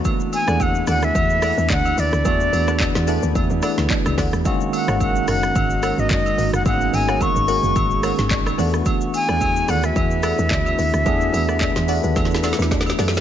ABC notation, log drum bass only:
X:1
M:4/4
L:1/16
Q:"Swing 16ths" 1/4=109
K:Elyd
V:1 name="Log drum bass" clef=bass
z3 E,,3 D,,2 E,,3 E,, =D,,2 ^D,, =D,, | E,,2 E,,3 E,,2 D,, E,, E,, z =D,, z C,, D,, E,, | z3 G,,,3 F,,,2 G,,,3 G,,, F,,,2 G,,, F,,, | G,,,2 G,,,3 G,,,2 F,,, G,,,3 G,,,3 E,,2 |
z3 E,,3 D,,2 E,,3 E,, =D,,2 ^D,, =D,, | E,,2 E,,3 E,,2 D,, E,,3 E,,3 F,,2 |]